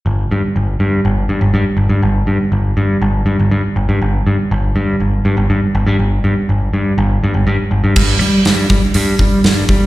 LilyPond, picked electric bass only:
\new Staff \with { instrumentName = "Picked electric bass" } { \clef bass \time 4/4 \key c \lydian \tempo 4 = 122 g,,8 g,16 r16 g,,8 g,8 g,,8 g,16 g,,16 g,16 r16 g,,16 g,16 | g,,8 g,16 r16 g,,8 g,8 g,,8 g,16 g,,16 g,16 r16 g,,16 g,16 | g,,8 g,16 r16 g,,8 g,8 g,,8 g,16 g,,16 g,16 r16 g,,16 g,16 | g,,8 g,16 r16 g,,8 g,8 g,,8 g,16 g,,16 g,16 r16 g,,16 g,16 |
g,8 g8 g,8 g16 r16 g,8 g8 g,8 g8 | }